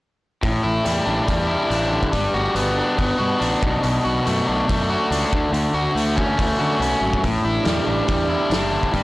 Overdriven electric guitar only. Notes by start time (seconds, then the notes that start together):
0.43 A2
0.63 E4
0.85 G3
1.06 D4
1.27 G3
1.47 E4
1.69 D4
1.91 D3
2.12 G3
2.34 F#4
2.55 B3
2.77 D4
2.97 B3
3.18 F#4
3.39 D4
3.62 B2
3.82 B2
4.05 F#4
4.26 A3
4.47 D4
4.68 A3
4.90 F#4
5.11 D4
5.33 D3
5.53 D3
5.74 F#4
5.96 A3
6.16 C#4
6.37 A3
6.59 F#4
6.80 C#4
7.02 F#3
7.23 A2
7.45 E4
7.65 G3
7.86 D4
8.07 G3
8.29 E4
8.50 D4
8.71 D3
8.94 G3